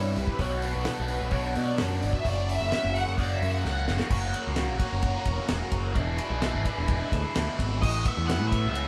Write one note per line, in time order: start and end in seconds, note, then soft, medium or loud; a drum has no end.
0.00 0.16 G2 medium
0.00 0.37 C3 medium
0.00 0.38 E3 medium
0.00 0.38 G3 medium
0.00 0.38 C4 medium
0.00 0.39 E4 medium
0.00 0.14 C#5 medium
0.16 0.27 C2 medium
0.16 0.40 B4 medium
0.16 open hi-hat medium
0.28 kick medium
0.39 0.72 B1 loud
0.39 1.30 B2 medium
0.39 1.32 F#3 medium
0.39 1.31 B3 medium
0.39 1.31 D4 loud
0.39 1.33 F#4 medium
0.39 0.63 C#5 medium
0.39 kick medium
0.39 open hi-hat medium
0.62 0.86 B4 medium
0.62 open hi-hat medium
0.75 0.86 B1 medium
0.85 1.09 A4 medium
0.85 snare loud
0.85 open hi-hat medium
1.00 1.21 B1 loud
1.06 1.29 B4 medium
1.06 open hi-hat medium
1.22 1.54 B1 medium
1.31 2.23 B2 medium
1.31 2.24 F#3 medium
1.31 2.24 B3 medium
1.31 2.24 D4 medium
1.31 2.25 F#4 medium
1.31 1.55 C#5 medium
1.31 kick loud
1.31 open hi-hat medium
1.56 1.78 B2 medium
1.56 1.78 D5 medium
1.56 open hi-hat medium
1.78 2.02 F#2 medium
1.78 1.96 C#5 medium
1.78 snare loud
1.78 open hi-hat medium
1.96 2.10 D5 medium
2.02 2.14 G1 medium
2.02 open hi-hat medium
2.12 2.26 E5 loud
2.12 kick medium
2.24 2.58 F#1 loud
2.24 3.16 F#2 medium
2.24 3.16 C#3 medium
2.24 3.16 F#3 medium
2.24 3.16 A#3 medium
2.24 3.16 C#4 medium
2.24 3.17 F#4 loud
2.24 2.49 D5 loud
2.24 kick medium
2.24 open hi-hat medium
2.49 2.96 E5 loud
2.49 open hi-hat medium
2.61 2.71 F#1 medium
2.72 snare loud
2.72 open hi-hat medium
2.85 3.06 F#1 loud
2.96 3.19 F#5 loud
2.96 open hi-hat medium
3.07 3.40 F#1 medium
3.17 4.09 F#2 medium
3.17 4.10 C#3 medium
3.17 4.10 F#3 medium
3.17 4.10 A#3 medium
3.17 4.10 C#4 medium
3.17 4.10 F#4 medium
3.17 3.32 D5 loud
3.17 kick loud
3.17 open hi-hat medium
3.34 3.49 E5 loud
3.42 3.64 F#2 medium
3.42 open hi-hat medium
3.51 3.65 F#5 loud
3.65 3.87 C#2 medium
3.65 3.88 F#5 medium
3.65 snare medium
3.88 3.99 F#1 medium
3.88 snare medium
4.00 snare medium
4.10 4.33 F#1 medium
4.10 4.57 F#2 medium
4.10 4.57 C#3 medium
4.10 4.34 F#3 loud
4.10 4.34 A#3 medium
4.10 4.33 C#4 loud
4.10 4.32 F#4 medium
4.10 5.96 F#4 medium
4.10 5.96 A#4 medium
4.10 5.96 C#5 medium
4.10 5.96 A#5 medium
4.10 kick loud
4.10 crash loud
4.34 4.55 F#3 medium
4.34 4.56 A#3 medium
4.34 4.56 C#4 medium
4.34 4.57 F#4 medium
4.34 ride medium
4.47 4.70 C#2 medium
4.56 4.80 F#3 medium
4.56 4.79 A#3 medium
4.56 4.78 C#4 medium
4.56 4.78 F#4 medium
4.56 snare loud
4.56 ride loud
4.70 4.80 A#1 medium
4.79 5.48 F#3 medium
4.79 5.49 A#3 medium
4.79 5.50 C#4 medium
4.79 5.49 F#4 medium
4.79 kick medium
4.79 ride medium
4.92 5.14 F#1 medium
5.02 kick loud
5.02 ride medium
5.25 5.38 E1 medium
5.25 kick medium
5.25 ride medium
5.49 5.61 E1 medium
5.49 5.94 F#2 loud
5.49 5.94 C#3 medium
5.49 5.73 F#3 loud
5.49 5.72 A#3 loud
5.49 5.72 C#4 loud
5.49 5.71 F#4 loud
5.49 snare loud
5.49 ride loud
5.72 5.95 F#1 loud
5.72 5.95 F#3 medium
5.72 5.95 A#3 medium
5.72 5.95 C#4 medium
5.72 5.94 F#4 medium
5.72 kick medium
5.72 ride medium
5.94 6.18 E1 medium
5.94 6.42 E2 medium
5.94 6.42 B2 medium
5.94 6.17 E3 medium
5.94 6.17 G#3 medium
5.94 6.16 D4 loud
5.94 6.16 E4 loud
5.94 7.80 E4 medium
5.94 7.81 B4 medium
5.94 7.81 D5 medium
5.94 7.81 G#5 medium
5.94 kick loud
5.94 ride medium
6.17 6.39 E3 medium
6.17 6.41 G#3 medium
6.17 6.41 D4 medium
6.17 6.42 E4 medium
6.17 ride medium
6.30 6.55 B1 loud
6.41 6.66 E3 medium
6.41 6.66 G#3 medium
6.41 6.65 D4 medium
6.41 6.64 E4 medium
6.41 snare loud
6.41 ride medium
6.54 6.65 G#1 medium
6.65 7.35 E3 medium
6.65 7.35 G#3 medium
6.65 7.35 D4 medium
6.65 7.36 E4 medium
6.65 kick medium
6.65 ride medium
6.78 7.00 E1 medium
6.88 kick loud
6.88 ride medium
7.12 7.24 D2 medium
7.12 kick medium
7.12 ride medium
7.35 7.47 D2 medium
7.35 7.80 E2 loud
7.35 7.81 B2 loud
7.35 7.60 E3 loud
7.35 7.59 G#3 medium
7.35 7.58 D4 loud
7.35 7.58 E4 loud
7.35 snare loud
7.35 ride loud
7.59 7.81 G#1 loud
7.59 7.82 E3 medium
7.59 7.81 G#3 medium
7.59 7.81 D4 medium
7.59 7.81 E4 medium
7.59 kick medium
7.59 ride medium
7.82 8.05 A1 loud
7.82 8.88 A2 medium
7.82 8.06 D#5 loud
7.82 kick loud
7.82 crash loud
8.05 8.52 B3 medium
8.05 8.27 E5 loud
8.05 kick medium
8.05 ride medium
8.17 8.41 E2 loud
8.27 8.88 E4 medium
8.27 8.47 F#5 loud
8.27 snare loud
8.27 ride loud
8.41 8.66 A2 loud
8.48 8.69 E5 medium
8.52 8.88 B3 medium
8.52 kick medium
8.52 ride medium
8.65 8.86 C#2 medium
8.70 8.88 E5 loud
8.75 8.88 C#4 medium
8.75 ride loud